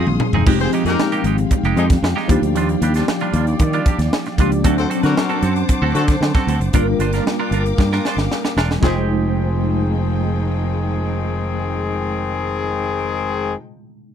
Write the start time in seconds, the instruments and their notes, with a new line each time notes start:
Already playing: tine electric piano F3 G#3 C4 D#4 G#4, alto saxophone F4, string section G#4 F5 C6 D#6
0.07 fretless electric bass A#1, muted clean electric guitar stroke, mid tom
0.20 muted clean electric guitar stroke, mid tom
0.33 fretless electric bass E1, clean electric guitar C4 D#4 G#4, floor tom
0.46 fretless electric bass F1, tine electric piano F3 G#3 C4 D#4 G4, string section G#3 F5 G5, clean electric guitar G#3 D#4 G4, kick, crash
0.60 horn section C4 G#4 C5, muted clean electric guitar stroke, closed hi-hat
0.73 clean electric guitar G#3 D#4 G4, closed hi-hat
0.85 fretless electric bass F2, clean electric guitar G#3 D#4 G#4, horn section A#3 D#4 G4 A#4, snare, closed hi-hat
0.99 muted clean electric guitar stroke, snare
1.12 clean electric guitar G#3 D#4 G4, closed hi-hat
1.24 fretless electric bass G#1, clean electric guitar G#3 D#4 G4, closed hi-hat
1.38 closed hi-hat
1.51 muted clean electric guitar stroke, kick, closed hi-hat
1.63 fretless electric bass F1, clean electric guitar G#3 D#4 G4, closed hi-hat
1.76 fretless electric bass F2, horn section G#3 C4 D#4 G#4, clean electric guitar G#3 D#4 G4, closed hi-hat
1.90 kick, snare, closed hi-hat
2.03 fretless electric bass F2, muted clean electric guitar stroke, snare
2.16 clean electric guitar G#3 D#4 G4, snare
2.28 fretless electric bass D#2, tine electric piano F3 A#3 D4 D#4 G4, clean electric guitar G3 D4 F4, string section D5, kick, closed hi-hat
2.42 fretless electric bass D2, closed hi-hat
2.55 fretless electric bass D#2, clean electric guitar G3 D4 F4, closed hi-hat
2.69 muted clean electric guitar stroke, closed hi-hat
2.81 fretless electric bass D#2, clean electric guitar G3 D4 G4, closed hi-hat
2.94 clean electric guitar G3 D4 F4, snare, closed hi-hat
3.08 muted clean electric guitar stroke, snare
3.20 clean electric guitar G3 D4 F4, closed hi-hat
3.33 fretless electric bass D#2, clean electric guitar G3 D4 F4, closed hi-hat
3.47 closed hi-hat
3.59 fretless electric bass D#3, muted clean electric guitar stroke, kick, closed hi-hat
3.73 clean electric guitar G3 D4 F4, closed hi-hat
3.86 clean electric guitar G3 D4 G4, kick, closed hi-hat
3.98 fretless electric bass D#2, snare, closed hi-hat
4.13 snare
4.26 muted clean electric guitar stroke, snare, closed hi-hat
4.38 fretless electric bass C#2, tine electric piano F3 A#3 D4 D#4 G4, clean electric guitar G3 D4 F4, kick, closed hi-hat
4.52 muted clean electric guitar stroke, closed hi-hat
4.63 fretless electric bass D2, tine electric piano F#3 C4 D4 A5, clean electric guitar C4 F#4 A4, string section C5 F#5 A5 D6, kick, closed hi-hat
4.77 horn section C4 F#4 A4 C5, closed hi-hat
4.90 clean electric guitar C4 F#4 A4, closed hi-hat
5.03 fretless electric bass D3, horn section A#3 D4 F#4 A#4, clean electric guitar C4 F#4 B4, snare, closed hi-hat
5.16 muted clean electric guitar stroke, snare
5.30 clean electric guitar C4 F#4 A4, closed hi-hat
5.42 fretless electric bass F#2, clean electric guitar C4 F#4 A4, closed hi-hat
5.56 closed hi-hat
5.69 muted clean electric guitar stroke, kick, closed hi-hat
5.82 fretless electric bass D2, clean electric guitar C4 F#4 A4
5.95 fretless electric bass D3, horn section A3 D4 F#4 A4, clean electric guitar C4 F#4 A4, closed hi-hat
6.08 muted clean electric guitar stroke, kick, snare, closed hi-hat
6.21 fretless electric bass D3, muted clean electric guitar stroke, snare
6.35 clean electric guitar C4 F#4 A4, kick, snare, closed hi-hat
6.47 fretless electric bass D2, clean electric guitar C4 F#4 A4, closed hi-hat
6.60 fretless electric bass F#1, closed hi-hat
6.73 fretless electric bass G1, tine electric piano G3 A#3 D4 F4 A#4, clean electric guitar D4 F4 A#4, string section A#4 F5 G5 D6, kick, closed hi-hat
6.87 muted clean electric guitar stroke
6.99 fretless electric bass G1, clean electric guitar D4 F4 C5, closed hi-hat
7.13 clean electric guitar D4 F4 A#4, snare, closed hi-hat
7.27 muted clean electric guitar stroke, snare
7.40 clean electric guitar D4 F4 A#4
7.51 fretless electric bass G1, clean electric guitar D4 F4 A#4, closed hi-hat
7.66 muted clean electric guitar stroke, closed hi-hat
7.78 fretless electric bass G2, muted clean electric guitar stroke, kick, snare
7.92 clean electric guitar D4 F4 A#4, snare
8.05 clean electric guitar D4 F4 C5, snare
8.17 fretless electric bass G1, snare
8.31 snare
8.45 muted clean electric guitar stroke, snare
8.56 fretless electric bass E1, clean electric guitar D4 F4 A#4, snare
8.71 snare
8.80 fretless electric bass F1, horn section D#3 G#3 C4 G#4, string section F3 G#3 D#4 G5, tine electric piano G#3 D#4 F4 G5, clean electric guitar G#3, kick, snare
8.85 clean electric guitar D#4 G4, tine electric piano C5